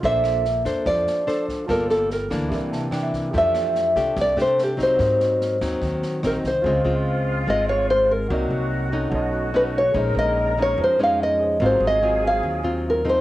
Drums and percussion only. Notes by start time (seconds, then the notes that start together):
0.03 kick, snare
0.24 cross-stick, snare
0.45 snare
0.65 kick, snare
0.86 kick, cross-stick, snare
1.07 snare
1.28 snare
1.48 kick, snare
1.69 kick, cross-stick, snare
1.90 snare
2.10 snare
2.31 kick, cross-stick, snare
2.52 kick, snare
2.72 snare
2.92 cross-stick, snare
3.13 kick, snare
3.33 kick, snare
3.55 cross-stick, snare
3.75 snare
3.96 kick, snare
4.17 kick, cross-stick, snare
4.38 snare
4.58 snare
4.79 kick, snare
4.99 kick, cross-stick, snare
5.20 snare
5.41 snare
5.61 kick, cross-stick, snare
5.81 kick, snare
6.03 snare
6.23 cross-stick, snare
6.44 kick, snare